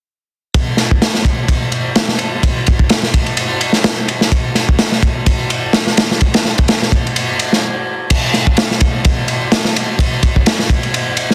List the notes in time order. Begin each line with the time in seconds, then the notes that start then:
0.54 kick, ride
0.77 snare, ride
0.91 kick
1.02 snare, ride
1.14 snare
1.25 kick, ride
1.48 kick, ride
1.72 ride
1.96 snare, ride
2.08 snare
2.19 ride
2.43 kick, ride
2.67 kick, ride
2.79 kick
2.89 snare, ride
3.03 snare
3.14 kick, ride
3.26 ride
3.37 ride
3.61 ride
3.73 snare
3.84 snare, ride
4.08 ride
4.21 snare
4.32 kick, ride
4.55 snare, ride
4.69 kick
4.79 snare, ride
4.92 snare
5.03 kick, ride
5.26 kick, ride
5.50 ride
5.73 snare, ride
5.87 snare
5.97 snare, ride
6.11 snare
6.21 kick, ride
6.34 snare, ride
6.45 snare
6.58 kick, ride
6.68 snare, ride
6.82 snare
6.92 kick, ride
7.07 ride
7.16 ride
7.39 ride
7.53 snare
8.10 kick, crash, ride
8.34 snare, ride
8.47 kick
8.57 snare, ride
8.71 snare
8.81 kick, ride
9.05 kick, ride
9.28 ride
9.52 snare, ride
9.65 snare
9.76 ride
9.99 kick, ride
10.23 kick, ride
10.36 kick
10.46 snare, ride
10.59 snare
10.70 kick, ride
10.83 ride
10.94 ride
11.17 ride
11.30 snare